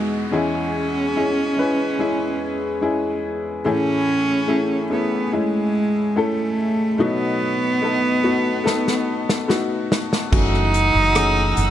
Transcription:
0.00 0.29 E2 soft
0.00 0.29 B2 soft
0.00 0.29 G#3 medium
0.00 0.35 B3 medium
0.00 0.34 D#4 medium
0.00 0.33 E4 soft
0.00 0.29 F#4 medium
0.00 0.33 G#4 medium
0.00 downlifter medium
0.32 3.62 E2 soft
0.32 3.62 E3 soft
0.32 1.11 G#3 medium
0.32 1.12 C#4 medium
0.32 3.21 C#4 medium
0.32 1.12 E4 medium
0.32 1.12 G#4 medium
1.15 1.55 G#3 medium
1.15 1.56 C#4 medium
1.15 1.56 E4 medium
1.15 1.56 G#4 medium
1.57 1.97 G#3 medium
1.57 1.97 C#4 medium
1.57 1.98 E4 soft
1.57 1.98 B4 medium
1.99 2.78 G#3 medium
1.99 2.78 C#4 medium
1.99 2.79 E4 medium
1.99 2.79 G#4 medium
2.81 3.61 G#3 medium
2.81 3.61 C#4 medium
2.81 3.62 E4 medium
2.81 3.62 G#4 medium
3.65 6.95 A2 medium
3.65 6.95 E3 soft
3.65 4.45 A3 medium
3.65 4.45 C#4 medium
3.65 4.88 C#4 loud
3.65 4.45 E4 medium
3.65 4.45 G#4 medium
4.48 4.88 A3 medium
4.48 4.88 C#4 medium
4.48 4.89 E4 medium
4.48 4.89 G#4 medium
4.90 5.30 A3 medium
4.90 5.36 B3 medium
4.90 5.30 C#4 soft
4.90 5.30 E4 soft
4.90 5.31 G#4 medium
5.32 6.12 G#3 medium
5.32 6.20 G#3 medium
5.32 6.12 C#4 soft
5.32 6.12 E4 medium
5.32 6.12 G#4 medium
6.16 6.95 A3 medium
6.16 7.02 A3 medium
6.16 6.95 C#4 medium
6.16 6.96 E4 medium
6.16 6.96 A4 medium
6.98 10.29 B2 soft
6.98 10.29 F#3 medium
6.98 7.78 A3 medium
6.98 7.78 B3 medium
6.98 9.92 B3 medium
6.98 7.79 D#4 medium
6.98 7.79 F#4 medium
7.82 8.21 A3 medium
7.82 8.22 B3 medium
7.82 8.22 D#4 medium
7.82 8.23 A4 medium
8.23 8.62 A3 medium
8.23 8.63 B3 soft
8.23 8.63 D#4 soft
8.23 8.64 F#4 medium
8.64 9.44 A3 medium
8.64 9.44 B3 medium
8.64 9.45 D#4 medium
8.64 9.45 A4 medium
8.64 snare soft
8.88 snare soft
9.29 snare medium
9.48 10.28 A3 medium
9.48 10.28 B3 medium
9.48 10.28 D#4 medium
9.48 10.29 F#4 medium
9.48 snare medium
9.92 snare medium
10.13 snare medium
10.31 10.91 F#1 medium
10.31 11.53 C#3 soft
10.31 11.12 E3 soft
10.31 11.11 A3 medium
10.31 11.12 C#4 soft
10.31 11.70 D#4 loud
10.31 11.70 F#4 medium
10.31 11.12 F#4 medium
10.31 11.70 F#5 medium
10.31 11.70 E6 medium
10.31 kick loud
10.31 crash medium
10.54 cross-stick soft
10.74 closed hi-hat medium
10.95 11.54 F#1 medium
11.15 11.70 E3 medium
11.15 11.70 A3 medium
11.15 11.70 C#4 medium
11.15 11.70 G#4 medium
11.15 cross-stick loud
11.15 closed hi-hat medium
11.57 11.70 F#1 medium
11.57 closed hi-hat medium

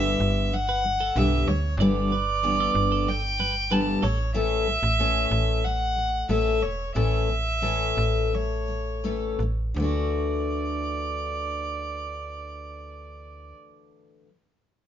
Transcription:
0.00 0.16 G1 medium
0.00 0.51 G2 medium
0.00 0.52 D3 medium
0.00 0.54 E3 medium
0.00 0.53 G3 medium
0.00 0.53 B3 medium
0.00 0.53 G4 medium
0.00 0.18 A4 medium
0.00 0.55 E5 medium
0.20 1.12 G1 medium
0.52 0.78 G2 medium
0.52 0.78 D3 medium
0.52 0.79 E3 medium
0.52 1.19 F#5 medium
0.69 0.84 B4 medium
0.84 1.10 G2 soft
0.84 1.10 D3 soft
0.84 1.10 E3 soft
1.01 1.16 A4 medium
1.16 1.45 B1 medium
1.16 1.47 G2 medium
1.16 1.48 D3 medium
1.16 1.48 E3 medium
1.16 1.48 G3 medium
1.16 1.48 B3 medium
1.16 1.49 G4 medium
1.16 1.49 E5 medium
1.47 1.77 D2 medium
1.47 1.73 G2 soft
1.47 1.74 D3 soft
1.47 1.74 E3 soft
1.47 1.79 C#5 medium
1.77 2.70 G1 loud
1.77 2.11 G2 medium
1.77 2.12 D3 medium
1.77 2.12 E3 medium
1.77 2.12 G3 medium
1.77 3.10 D5 loud
1.77 2.10 D5 medium
1.81 2.12 B3 medium
1.81 2.12 G4 medium
2.12 2.37 G2 soft
2.12 2.38 D3 soft
2.12 2.42 B4 medium
2.43 3.06 G2 medium
2.43 3.07 D3 medium
2.43 3.09 E3 medium
2.43 3.07 G3 medium
2.43 3.07 B3 medium
2.43 3.07 G4 medium
2.60 2.75 A4 medium
2.75 3.98 G1 medium
2.92 3.22 A4 medium
3.07 3.32 G2 soft
3.07 3.33 D3 soft
3.07 3.33 E3 medium
3.07 3.74 G5 loud
3.39 3.64 G2 soft
3.39 3.65 D3 soft
3.39 3.65 E3 soft
3.39 3.54 B4 medium
3.70 4.02 G2 medium
3.70 4.02 D3 medium
3.70 4.03 E3 medium
3.70 4.03 G3 medium
3.70 4.03 B3 medium
3.70 4.03 G4 medium
3.70 3.86 B4 medium
3.70 4.04 A5 medium
4.02 4.78 A1 medium
4.02 4.28 A2 soft
4.02 4.18 A4 medium
4.02 4.34 C#5 medium
4.34 4.66 A2 medium
4.34 4.66 E3 medium
4.34 4.67 A3 medium
4.34 4.67 C#4 medium
4.34 4.67 A4 medium
4.34 5.66 E5 loud
4.67 4.92 A2 soft
4.67 4.93 E3 soft
4.83 5.27 A1 medium
4.99 5.63 A2 medium
4.99 5.65 E3 medium
4.99 6.29 A3 medium
4.99 5.64 C#4 medium
4.99 6.30 A4 medium
5.31 6.24 A1 medium
5.64 5.89 A2 soft
5.64 5.90 E3 medium
5.64 6.29 F#5 medium
5.96 6.22 A2 soft
5.96 6.23 E3 soft
6.29 6.64 A1 medium
6.29 6.60 A2 medium
6.29 6.62 E3 medium
6.29 6.62 A3 medium
6.29 6.62 C#4 medium
6.29 6.62 A4 medium
6.29 6.64 E5 medium
6.61 6.93 E1 medium
6.61 6.88 A2 soft
6.61 6.89 E3 soft
6.61 6.95 C#5 medium
6.95 7.94 A1 loud
6.95 7.28 A2 medium
6.95 7.29 E3 medium
6.95 7.29 A3 medium
6.95 7.29 C#4 medium
6.95 7.29 A4 medium
6.95 8.36 E5 medium
7.29 7.56 A2 soft
7.29 7.57 E3 soft
7.62 8.32 A2 medium
7.62 8.34 E3 medium
7.62 9.04 A3 medium
7.62 8.32 C#4 medium
7.62 9.05 A4 medium
7.97 9.36 A1 medium
8.33 8.61 A2 soft
8.33 8.62 E3 medium
8.33 9.41 C#5 medium
8.68 8.96 A2 soft
8.68 8.97 E3 soft
9.04 9.39 A2 medium
9.04 9.40 E3 medium
9.04 9.41 A3 medium
9.04 9.41 C#4 medium
9.04 9.41 A4 medium
9.39 9.74 A1 medium
9.39 9.70 A2 soft
9.39 9.71 E3 soft
9.74 13.54 D2 medium
9.74 14.27 D3 medium
9.74 14.28 E3 medium
9.79 14.29 A3 medium
9.79 14.31 D4 medium
9.79 13.55 D5 medium
9.84 14.31 F#4 medium

